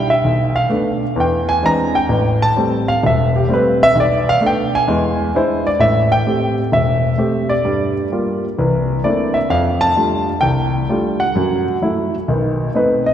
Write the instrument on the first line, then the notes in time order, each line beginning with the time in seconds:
grand piano
Already playing: G3 D4 E4
0.10 E5
0.24 B1
0.56 F5
0.69 A3 B3 D4
1.16 E2
1.20 G5
1.49 G#5
1.62 E3 G#3 C4 D4 A#5
1.95 G5
2.09 A1
2.42 A5
2.56 G3 A3 C4
2.88 F5
3.03 E1 E5
3.36 G4
3.49 G3 A3 C4
3.53 B4
3.83 E5
3.95 B1
4.00 D5
4.29 F5
4.41 A3 B3 D4
4.46 G5
4.75 G#5
4.88 E2 G#3
5.35 G#3 D4 E4 C5
5.67 D5
5.79 A1 A2 E5
6.12 G5
6.26 A3 C4 G4
6.72 E1 E5
7.18 A3 C4 G4
7.49 D5
7.65 G2 G3
8.12 G3 A#3 F4
8.58 C2 E3
9.04 A3 A#3 C4 D4 E4 D5
9.34 E5
9.50 F2 F5
9.81 A5
9.96 G3 A3 D4 F4
10.41 C2 G5
10.89 G3 A3 D4 F4
11.20 F#5
11.35 F#2 F#3
11.82 F#3 A3 E4
12.28 B1 D#3
12.74 A3 B3 C4 D#4 B4
13.06 D#5